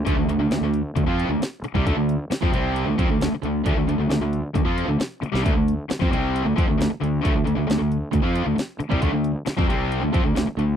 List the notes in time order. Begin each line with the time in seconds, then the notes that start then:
0.06 D2 D3 A3, kick, closed hi-hat
0.17 D2 D3 A3
0.27 D2 D3 A3, closed hi-hat
0.39 D2 D3 A3
0.50 D2 D3 A3, snare, closed hi-hat
0.61 D2 D3 A3
0.74 closed hi-hat
0.96 D2 D3 A3, kick, closed hi-hat
1.06 F2 F3 C4 F4
1.20 closed hi-hat
1.29 D2 D3 A3
1.40 muted fingered electric bass stroke, muted distorted electric guitar stroke, snare, closed hi-hat
1.62 muted fingered electric bass stroke, muted distorted electric guitar stroke, closed hi-hat
1.74 C2 C3 G3, kick
1.86 D2 D3 A3, kick, closed hi-hat
1.96 D2 D3 A3
2.09 closed hi-hat
2.30 muted fingered electric bass stroke, muted distorted electric guitar stroke, snare, closed hi-hat
2.41 F2 F3 C4, kick
2.52 C2 C3 G3 C4, closed hi-hat
2.76 closed hi-hat
2.86 D2 D3 A3
2.98 F2 F3 C4, kick, closed hi-hat
3.08 D2 D3 A3
3.20 D2 D3 A3, snare, closed hi-hat
3.32 muted distorted electric guitar stroke, muted fingered electric bass stroke
3.42 D2 D3 A3, closed hi-hat
3.64 D2 D3 A3, kick, closed hi-hat
3.76 D2 D3 A3
3.87 D2 D3 A3, closed hi-hat
3.98 D2 D3 A3
4.09 D2 D3 A3, snare, closed hi-hat
4.20 D2 D3 A3
4.33 closed hi-hat
4.54 D2 D3 A3, kick, closed hi-hat
4.65 F2 F3 C4 F4
4.78 closed hi-hat
4.88 D2 D3 A3
4.99 muted distorted electric guitar stroke, muted fingered electric bass stroke, snare, closed hi-hat
5.22 muted distorted electric guitar stroke, muted fingered electric bass stroke, closed hi-hat, high tom
5.33 C2 C3 G3, snare
5.44 D2 D3 A3, kick, closed hi-hat
5.55 D2 D3 A3
5.68 closed hi-hat
5.90 muted distorted electric guitar stroke, muted fingered electric bass stroke, snare, closed hi-hat
6.01 F2 F3 C4, kick
6.12 C2 C3 G3 C4, closed hi-hat
6.36 closed hi-hat
6.45 D2 D3 A3
6.57 F2 F3 C4, kick, closed hi-hat
6.69 D2 D3 A3
6.79 D2 D3 A3, snare, closed hi-hat
6.90 muted distorted electric guitar stroke, muted fingered electric bass stroke
7.01 D2 D3 A3, closed hi-hat
7.23 D2 D3 A3, kick, closed hi-hat
7.35 D2 D3 A3
7.46 D2 D3 A3, closed hi-hat
7.57 D2 D3 A3
7.67 D2 D3 A3, snare, closed hi-hat
7.78 D2 D3 A3
7.92 closed hi-hat
8.11 D2 D3 A3, kick, closed hi-hat
8.23 F2 F3 C4 F4
8.36 closed hi-hat
8.46 D2 D3 A3
8.56 muted distorted electric guitar stroke, muted fingered electric bass stroke, snare, closed hi-hat
8.79 muted distorted electric guitar stroke, muted fingered electric bass stroke, closed hi-hat
8.89 C2 C3 G3, kick
9.01 D2 D3 A3, kick, closed hi-hat
9.13 D2 D3 A3
9.24 closed hi-hat
9.46 muted distorted electric guitar stroke, muted fingered electric bass stroke, snare, closed hi-hat
9.57 F2 F3 C4, kick
9.68 C2 C3 G3 C4, closed hi-hat
9.92 closed hi-hat
10.02 D2 D3 A3
10.12 F2 F3 C4, kick, closed hi-hat
10.24 D2 D3 A3
10.35 D2 D3 A3, snare, closed hi-hat
10.46 muted distorted electric guitar stroke, muted fingered electric bass stroke
10.57 D2 D3 A3, closed hi-hat